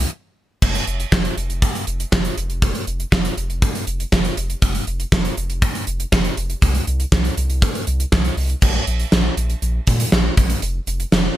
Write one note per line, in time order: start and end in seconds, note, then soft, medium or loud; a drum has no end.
0.00 closed hi-hat medium
0.62 0.80 F1 loud
0.62 kick loud
0.62 crash medium
0.75 closed hi-hat soft
0.87 1.05 F1 loud
0.87 closed hi-hat medium
1.00 closed hi-hat medium
1.12 1.30 F1 loud
1.12 kick loud
1.12 snare loud
1.25 closed hi-hat medium
1.37 1.63 F1 loud
1.37 closed hi-hat medium
1.50 closed hi-hat medium
1.62 kick loud
1.62 closed hi-hat medium
1.75 closed hi-hat medium
1.87 2.05 F1 loud
1.87 closed hi-hat medium
2.00 closed hi-hat medium
2.12 2.30 F1 loud
2.12 kick loud
2.12 snare loud
2.25 closed hi-hat medium
2.37 2.72 F1 loud
2.37 closed hi-hat medium
2.50 closed hi-hat soft
2.62 kick loud
2.62 closed hi-hat medium
2.75 closed hi-hat soft
2.87 3.05 F1 medium
2.87 closed hi-hat medium
3.00 closed hi-hat medium
3.12 3.30 F1 loud
3.12 kick loud
3.12 snare loud
3.25 closed hi-hat medium
3.37 3.64 F1 loud
3.37 closed hi-hat medium
3.50 closed hi-hat soft
3.62 kick loud
3.62 closed hi-hat medium
3.75 closed hi-hat medium
3.87 4.05 F1 loud
3.87 closed hi-hat medium
4.00 closed hi-hat medium
4.12 4.30 F1 loud
4.12 kick loud
4.12 snare loud
4.25 closed hi-hat medium
4.37 4.55 F1 loud
4.37 closed hi-hat medium
4.50 closed hi-hat soft
4.62 4.80 F1 loud
4.62 kick loud
4.62 closed hi-hat medium
4.75 closed hi-hat soft
4.87 5.05 F1 loud
4.87 closed hi-hat medium
5.00 closed hi-hat medium
5.12 5.30 F1 loud
5.12 kick loud
5.12 snare loud
5.25 closed hi-hat medium
5.37 5.64 F1 loud
5.37 closed hi-hat medium
5.50 closed hi-hat soft
5.62 kick loud
5.62 closed hi-hat medium
5.75 closed hi-hat medium
5.87 6.05 F1 loud
5.87 closed hi-hat medium
6.00 closed hi-hat medium
6.12 6.30 F1 loud
6.12 kick loud
6.12 snare loud
6.25 closed hi-hat medium
6.37 6.55 F1 loud
6.37 closed hi-hat medium
6.50 closed hi-hat soft
6.62 6.80 C2 loud
6.62 kick loud
6.62 closed hi-hat medium
6.75 closed hi-hat medium
6.87 7.05 C2 medium
6.87 closed hi-hat medium
7.00 closed hi-hat medium
7.12 7.30 C2 loud
7.12 kick loud
7.12 snare loud
7.25 closed hi-hat medium
7.37 7.64 C2 loud
7.37 closed hi-hat medium
7.50 closed hi-hat soft
7.62 kick loud
7.62 closed hi-hat medium
7.75 closed hi-hat medium
7.87 8.05 C2 loud
7.87 closed hi-hat medium
8.00 closed hi-hat medium
8.12 8.30 C2 loud
8.12 kick loud
8.12 snare loud
8.25 closed hi-hat medium
8.37 8.55 C2 loud
8.37 open hi-hat medium
8.50 closed hi-hat soft
8.62 8.80 A#1 loud
8.62 kick loud
8.62 crash loud
8.87 9.05 A#1 loud
8.87 closed hi-hat medium
9.00 closed hi-hat medium
9.12 9.30 A#1 loud
9.12 snare loud
9.37 9.55 A#1 loud
9.37 closed hi-hat medium
9.50 closed hi-hat medium
9.62 9.80 A#1 loud
9.62 closed hi-hat medium
9.87 10.05 A#2 loud
9.87 kick medium
9.87 closed hi-hat medium
10.00 closed hi-hat medium
10.12 10.30 A#1 loud
10.12 snare loud
10.37 10.55 A#1 loud
10.37 kick loud
10.37 closed hi-hat medium
10.50 closed hi-hat medium
10.62 10.80 F1 loud
10.62 closed hi-hat medium
10.87 11.05 F1 loud
10.87 closed hi-hat medium
11.00 closed hi-hat medium
11.12 11.30 F1 loud
11.12 snare loud